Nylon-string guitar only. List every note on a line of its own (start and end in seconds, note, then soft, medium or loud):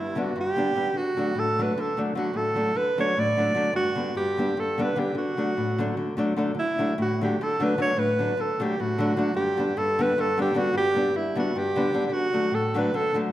0.00 0.27 G2 medium
0.15 0.31 D3 medium
0.15 0.31 G3 medium
0.15 0.32 B3 medium
0.15 0.32 D4 medium
0.36 0.65 G2 medium
0.56 0.71 D3 medium
0.56 0.71 G3 medium
0.56 0.71 B3 soft
0.56 0.72 D4 medium
0.75 0.89 D3 soft
0.75 0.90 G3 soft
0.75 0.90 B3 medium
0.75 0.90 D4 medium
0.93 1.16 D3 soft
1.17 1.31 D3 medium
1.17 1.31 F#3 soft
1.17 1.32 A3 medium
1.17 1.32 D4 medium
1.35 1.67 A2 soft
1.58 1.73 D3 medium
1.58 1.74 F#3 medium
1.58 1.73 A3 medium
1.58 1.74 D4 medium
1.78 1.96 D3 medium
1.97 2.11 D3 medium
1.97 2.12 F#3 medium
1.97 2.12 A3 medium
1.97 2.12 D4 medium
2.15 2.30 D3 medium
2.15 2.30 F#3 medium
2.15 2.30 A3 medium
2.15 2.31 D4 medium
2.33 2.65 A2 soft
2.55 2.70 D3 soft
2.55 2.71 F#3 soft
2.55 2.71 A3 soft
2.55 2.71 D4 medium
2.75 2.97 D3 medium
2.98 3.13 D3 medium
2.98 3.13 F#3 medium
2.98 3.13 A3 medium
2.98 3.14 D4 medium
3.17 3.47 A2 medium
3.37 3.52 D3 medium
3.37 3.52 F#3 medium
3.37 3.52 A3 medium
3.37 3.53 D4 medium
3.55 3.70 D3 medium
3.55 3.70 F#3 medium
3.55 3.70 A3 medium
3.55 3.71 D4 medium
3.73 4.05 G2 medium
3.95 4.11 D3 medium
3.95 4.11 G3 medium
3.95 4.12 B3 soft
3.95 4.12 D4 medium
4.15 4.47 G2 medium
4.37 4.53 D3 medium
4.37 4.53 G3 medium
4.37 4.54 B3 medium
4.37 4.54 D4 medium
4.57 4.87 G2 medium
4.78 4.92 D3 medium
4.78 4.93 G3 medium
4.78 4.93 B3 medium
4.78 4.93 D4 medium
4.96 5.10 D3 medium
4.96 5.11 G3 medium
4.96 5.11 B3 soft
4.96 5.11 D4 medium
5.15 5.36 D3 medium
5.37 5.52 D3 medium
5.37 5.53 F#3 soft
5.37 5.52 A3 medium
5.37 5.53 D4 medium
5.57 5.88 A2 medium
5.78 5.93 D3 medium
5.78 5.94 F#3 medium
5.78 5.94 A3 medium
5.78 5.94 D4 medium
5.97 6.16 D3 medium
6.17 6.32 D3 medium
6.17 6.33 F#3 medium
6.17 6.32 A3 medium
6.17 6.33 D4 medium
6.36 6.51 D3 medium
6.36 6.51 F#3 medium
6.36 6.51 A3 medium
6.36 6.52 D4 medium
6.55 6.77 D3 soft
6.78 6.93 D3 medium
6.78 6.93 F#3 medium
6.78 6.93 A3 medium
6.78 6.93 D4 medium
6.98 7.29 A2 medium
7.21 7.35 D3 medium
7.21 7.35 F#3 medium
7.21 7.35 A3 medium
7.21 7.36 D4 medium
7.41 7.59 D3 medium
7.60 7.73 D3 medium
7.60 7.73 F#3 medium
7.60 7.74 A3 medium
7.60 7.74 D4 medium
7.78 7.91 D3 medium
7.78 7.91 F#3 medium
7.78 7.92 A3 medium
7.78 7.92 D4 medium
7.96 8.27 A2 medium
8.19 8.33 D3 medium
8.19 8.33 F#3 soft
8.19 8.33 A3 medium
8.19 8.33 D4 medium
8.37 8.59 D3 medium
8.60 8.74 D3 medium
8.60 8.74 F#3 medium
8.60 8.74 A3 medium
8.60 8.75 D4 medium
8.80 9.08 A2 medium
8.98 9.12 D3 medium
8.98 9.13 F#3 medium
8.98 9.13 A3 medium
8.98 9.13 D4 medium
9.16 9.30 D3 medium
9.16 9.30 F#3 medium
9.16 9.31 A3 medium
9.16 9.31 D4 medium
9.34 9.66 G2 medium
9.57 9.71 D3 medium
9.57 9.72 G3 medium
9.57 9.72 B3 soft
9.57 9.73 D4 medium
9.77 10.08 G2 medium
9.99 10.13 D3 medium
9.99 10.13 G3 medium
9.99 10.14 B3 medium
9.99 10.14 D4 medium
10.18 10.47 G2 medium
10.38 10.52 D3 medium
10.38 10.52 G3 medium
10.38 10.52 B3 medium
10.38 10.52 D4 medium
10.54 10.69 D3 medium
10.54 10.69 G3 medium
10.54 10.69 B3 medium
10.54 10.70 D4 medium
10.73 11.04 G2 medium
10.95 11.10 D3 medium
10.95 11.10 G3 soft
10.95 11.10 B3 medium
10.95 11.11 D4 medium
11.14 11.46 G2 medium
11.35 11.51 D3 medium
11.35 11.51 G3 medium
11.35 11.51 B3 medium
11.35 11.52 D4 medium
11.56 11.85 G2 medium
11.76 11.90 D3 medium
11.76 11.90 G3 medium
11.76 11.91 B3 medium
11.76 11.91 D4 medium
11.93 12.07 D3 medium
11.93 12.08 G3 soft
11.93 12.08 B3 medium
11.93 12.08 D4 medium
12.09 12.31 D3 soft
12.33 12.48 D3 soft
12.33 12.48 F#3 medium
12.33 12.49 A3 medium
12.33 12.49 D4 medium
12.51 12.83 A2 soft
12.74 12.90 D3 medium
12.74 12.90 F#3 medium
12.74 12.90 A3 medium
12.74 12.90 D4 medium
12.94 13.13 D3 medium
13.14 13.29 D3 medium
13.14 13.29 F#3 medium
13.14 13.29 A3 medium
13.14 13.30 D4 medium